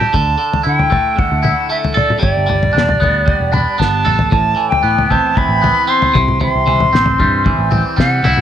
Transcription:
0.00 0.13 E3 medium
0.00 0.13 G3 medium
0.00 0.13 E4 medium
0.00 0.13 G4 medium
0.00 0.62 A5 medium
0.00 mid tom medium
0.13 0.35 D2 medium
0.13 0.37 D3 medium
0.13 kick loud
0.13 floor tom medium
0.38 1.15 D3 medium
0.53 floor tom medium
0.63 0.88 D3 medium
0.63 1.42 E4 medium
0.63 1.20 G5 medium
0.79 floor tom medium
0.90 1.69 A3 medium
0.90 kick medium
0.90 floor tom medium
1.16 2.19 D3 medium
1.16 1.70 F#5 medium
1.16 kick loud
1.16 floor tom medium
1.32 1.53 D2 medium
1.43 2.22 E4 medium
1.43 floor tom medium
1.43 mid tom medium
1.70 2.50 A3 medium
1.70 1.77 E5 medium
1.84 floor tom medium
1.94 2.22 A4 medium
1.94 2.20 D5 medium
1.94 floor tom medium
1.94 mid tom medium
2.10 mid tom medium
2.19 2.33 G1 medium
2.19 2.46 G3 medium
2.19 3.54 D5 loud
2.19 kick loud
2.23 floor tom medium
2.37 2.47 G1 medium
2.47 2.70 G1 medium
2.47 3.25 G3 medium
2.47 floor tom medium
2.63 floor tom medium
2.73 2.96 E1 medium
2.73 3.51 D4 medium
2.78 snare medium
2.89 floor tom medium
3.00 3.33 D2 medium
3.00 3.77 B3 medium
3.00 kick medium
3.00 floor tom medium
3.26 4.32 G3 medium
3.26 kick loud
3.26 floor tom medium
3.40 3.51 E1 medium
3.52 3.65 E1 medium
3.52 4.32 D4 medium
3.52 3.80 B5 medium
3.52 floor tom medium
3.52 mid tom medium
3.78 4.03 G1 medium
3.78 4.32 B3 medium
3.78 4.31 A5 medium
3.78 kick medium
3.78 snare soft
4.05 4.30 A1 medium
4.05 4.32 A4 medium
4.05 mid tom medium
4.19 floor tom medium
4.31 4.53 A1 medium
4.31 5.63 A2 medium
4.31 4.68 A5 loud
4.31 kick loud
4.31 floor tom medium
4.56 5.35 E3 medium
4.69 5.12 G5 medium
4.69 floor tom medium
4.83 5.05 A2 medium
4.83 5.61 B3 medium
4.98 floor tom medium
5.10 5.86 C4 medium
5.10 5.39 A5 medium
5.10 kick medium
5.10 floor tom medium
5.35 6.66 E3 medium
5.35 5.91 B5 loud
5.35 kick loud
5.35 floor tom medium
5.49 5.70 A1 medium
5.62 6.15 B3 medium
5.62 floor tom medium
5.62 mid tom medium
5.87 6.15 C4 medium
5.87 6.42 C6 loud
6.02 floor tom medium
6.14 6.47 C2 medium
6.14 6.39 C3 medium
6.14 kick loud
6.14 floor tom medium
6.14 mid tom medium
6.28 mid tom medium
6.40 7.72 C3 medium
6.40 7.68 C6 medium
6.40 floor tom medium
6.55 6.66 C2 medium
6.66 6.88 C2 medium
6.66 7.45 E3 medium
6.66 floor tom medium
6.80 floor tom medium
6.93 7.15 A1 medium
6.93 7.70 C4 medium
6.93 snare medium
7.06 floor tom medium
7.19 7.51 G2 medium
7.19 7.95 G3 medium
7.19 kick medium
7.19 floor tom medium
7.45 8.41 E3 medium
7.45 kick loud
7.45 floor tom medium
7.59 7.69 A1 medium
7.71 7.83 A1 medium
7.71 8.41 C4 medium
7.71 floor tom medium
7.71 mid tom medium
7.96 8.20 C3 medium
7.96 8.41 G3 medium
7.96 8.41 F#5 medium
7.96 kick medium
7.96 snare medium
8.23 8.34 C2 medium
8.23 8.41 E4 medium
8.23 floor tom medium
8.23 mid tom medium
8.37 mid tom medium

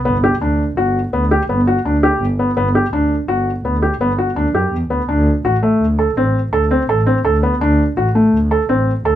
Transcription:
0.05 0.37 G1 medium
0.05 0.16 B3 medium
0.24 0.34 G4 medium
0.41 0.73 D2 medium
0.41 0.62 D4 medium
0.77 1.08 G1 medium
0.77 0.98 F#4 medium
1.13 1.45 D2 medium
1.13 1.24 B3 medium
1.31 1.42 G4 medium
1.49 1.80 G1 medium
1.49 1.60 B3 medium
1.67 1.78 F#4 medium
1.85 2.17 D2 medium
1.85 1.96 D4 medium
2.03 2.24 G4 medium
2.21 2.37 G1 medium
2.39 2.50 B3 medium
2.57 2.88 G1 medium
2.57 2.67 B3 medium
2.75 2.85 G4 medium
2.93 3.24 D2 medium
2.93 3.14 D4 medium
3.28 3.60 G1 medium
3.28 3.49 F#4 medium
3.65 3.96 D2 medium
3.65 3.75 B3 medium
3.82 3.93 G4 medium
4.01 4.32 G1 medium
4.01 4.11 B3 medium
4.18 4.29 F#4 medium
4.36 4.52 D2 medium
4.36 4.47 D4 medium
4.54 4.71 F#2 medium
4.54 4.76 G4 medium
4.73 4.89 E2 medium
4.90 5.07 D2 medium
4.90 5.01 B3 medium
5.09 5.40 D2 medium
5.09 5.30 D4 medium
5.44 5.76 A1 medium
5.44 5.55 F#4 medium
5.63 5.84 A3 medium
5.81 6.12 D2 medium
5.99 6.09 A4 medium
6.16 6.48 A1 medium
6.16 6.38 C4 medium
6.52 6.84 D2 medium
6.52 6.63 A4 medium
6.71 6.81 C4 medium
6.89 7.20 A1 medium
6.89 6.99 A4 medium
7.06 7.17 C4 medium
7.25 7.56 D2 medium
7.25 7.35 A4 medium
7.43 7.53 B3 medium
7.61 7.93 D2 medium
7.61 7.82 D4 medium
7.97 8.28 A1 medium
7.97 8.07 F#4 medium
8.15 8.36 A3 medium
8.33 8.64 D2 medium
8.51 8.62 A4 medium
8.69 9.00 A1 medium
8.69 8.90 C4 medium
9.05 9.15 D2 medium
9.05 9.15 A4 medium

